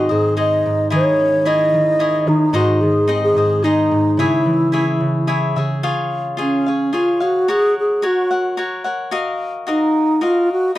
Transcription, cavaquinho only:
Already playing: D#4 G#4
0.09 G#4 C5 D#5
0.37 D#4 G#4 C5 D#5
0.90 E4 G#4 C#5 D#5
1.45 E4 G#4 C#5 D#5
2.00 E4 G#4 C#5 D#5
2.53 D#4 G#4 C5 D#5
3.08 D#4 G#4 C5 D#5
3.37 G#4 C5 D#5
3.64 D#4 G#4 C5 D#5
4.19 E4 G#4 C#5 E5
4.72 E4 G#4 C#5 E5
5.27 E4 G#4 C#5 E5
5.56 G#4 C#5 E5
5.83 F4 G#4 C#5 F5
6.37 F4 G#4 C#5 F5
6.66 G#4 C#5 F5
6.93 F4 G#4 C#5 F5
7.20 G#4 C#5 F5
7.48 F#4 A#4 C#5 F#5
8.02 F#4 A#4 C#5 F#5
8.31 A#4 C#5 F#5
8.57 F#4 A#4 C#5 F#5
8.84 A#4 C#5 F#5
9.11 F#4 A#4 D#5 F5
9.67 F#4 A#4 D#5 F5
10.21 F#4 A#4 D#5 F5

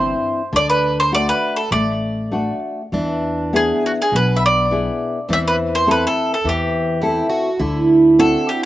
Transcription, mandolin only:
Already playing: C5
0.56 D5
0.70 B4
1.00 C5
1.15 D5
1.29 B4
1.56 A4
1.72 D5
3.56 G#4
3.86 F#4
4.02 G#4
4.16 B4
4.37 E5
4.46 D5
5.33 E5
5.48 B4
5.75 C5
5.91 B4
6.07 A4
6.34 A4
6.49 G4
8.20 A4
8.49 G4

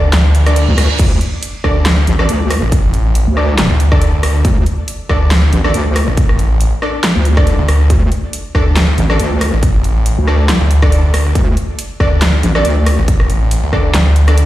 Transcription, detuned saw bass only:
Already playing: D2
1.64 D2
2.62 A1
3.05 A1
3.70 D2
3.92 D2
4.23 D2
5.09 D2
6.08 A1
6.51 A1
7.59 D2
8.55 D2
9.53 A1
9.96 A1
10.61 D2
10.82 D2
11.14 D2
12.00 D2
12.98 A1
13.41 A1
13.63 D2

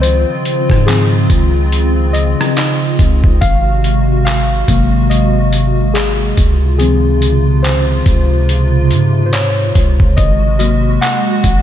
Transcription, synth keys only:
Already playing: D#3 F3 C4 D#5
0.01 C5
0.86 D#3 F3 C4 G#4
2.13 D#5
3.41 F5
4.25 F5
4.68 C3 F#3 A#3
5.09 D#5
5.94 G#4
6.78 D#3 F3 C4 G#4
7.63 C5
9.26 C5
9.32 C#5
10.17 D#5
10.59 C3 F#3 A#3 D#5
11.01 F#5

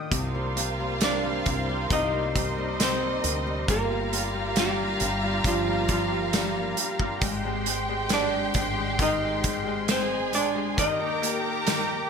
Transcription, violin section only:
0.12 F4 F5
2.35 D#4 D#5
3.68 F4 F5
7.21 G4 G5
9.89 G#4 G#5
10.78 A#4 A#5

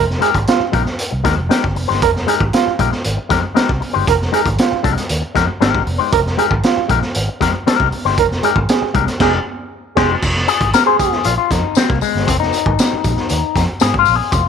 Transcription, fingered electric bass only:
Already playing: F1
0.35 G#1
0.60 muted fingered electric bass stroke
0.73 A#1
1.12 C2
1.25 D#2
1.38 F1
1.64 G1
1.77 F1
1.90 G1
2.02 F1
2.40 G#1
2.67 muted fingered electric bass stroke
2.79 A#1
3.06 G#1
3.31 F2
3.57 muted fingered electric bass stroke
3.69 C2
3.96 G1
4.08 F1
4.46 G#1
4.72 muted fingered electric bass stroke
4.84 C2
5.10 D#2
5.36 F2
5.61 G#1
5.87 F1
6.12 F1
6.51 G#1
6.77 muted fingered electric bass stroke
6.89 A#1
7.16 G#1
7.41 F2
7.67 muted fingered electric bass stroke
7.80 C2
8.05 G1
8.18 F1
8.56 G#1
8.82 muted fingered electric bass stroke
8.95 C2
9.20 F1
9.97 F1
10.23 F1
10.61 G#1
11.25 A#1
11.51 F2
11.77 muted fingered electric bass stroke
11.90 C2
12.15 G1
12.28 F1
12.66 G#1
12.93 muted fingered electric bass stroke
13.05 A#1
13.31 D#2
13.55 F2
13.82 G#2
14.08 A#1
14.32 F1

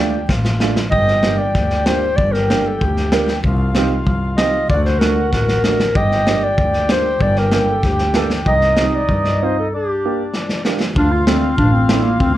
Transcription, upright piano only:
Already playing: D4 F4
0.00 A3
0.62 A3 D4 F4
1.25 A#3 D4 G4
1.89 A#3 D4 G4
2.52 A#3 D4 G4
3.12 A#3 D4 A#4
3.76 C4 D#4 G4
4.40 C4 D#4 G4
5.03 A3 D4 F#4
5.66 A3 D4 F#4
6.28 A#3 D4 G4
6.91 A#3 D4 G4
7.53 A#3 D4 A#4
8.16 A#3 D4 A4
8.81 C4 D#4 G4
9.42 C4 D#4 F4
10.05 A#3 D4 G4
10.66 A#3 D4 G4
11.28 A3 D4 F4
11.91 A3 D4 E4

